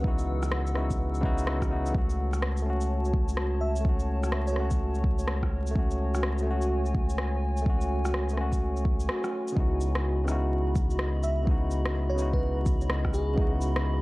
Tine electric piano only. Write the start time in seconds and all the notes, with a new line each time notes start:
Already playing: B3 D#4 E4 F#4
0.00 C#3 B3
0.04 D#4 E4 F#4
0.74 C#3 B3 D#4 E4
0.78 F#4
1.21 C#3 B3 D#4 E4
1.25 F#4
1.69 C#3 B3 D#4 E4
1.73 F#4
1.90 A3
1.94 C#4 F#4
2.62 A3 C#4
2.70 F#4
3.81 A3 C#4
3.89 F#4
4.52 A3
4.56 C#4 F#4
5.71 A3 C#4
5.79 F#4
6.43 A3
6.47 C#4 F#4
7.62 A3 C#4
7.70 F#4
8.33 A3
8.37 C#4 F#4
9.52 C#3 B3
9.56 D#4 E4 F#4
10.24 C#3 B3
10.28 D#4 E4 F#4
11.43 C#3 B3 D#4
11.49 E4 F#4
12.14 C#3 B3 D#4
12.20 E4 F#4
13.34 C#3 B3
13.38 D#4 E4 F#4